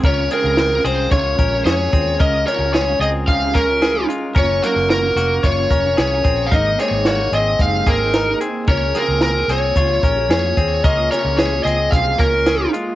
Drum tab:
HH |xxxxxxxx|xxxxxxxx|xxxxxxxx|xxxxxxxx|
SD |--o---o-|--o---o-|--o---o-|--o---o-|
BD |o---oo-o|o---oo--|o---oo-o|o---oo--|

HH |xxxxxxxx|xxxxxxxx|
SD |--o---o-|--o---o-|
BD |o---oo-o|o---oo--|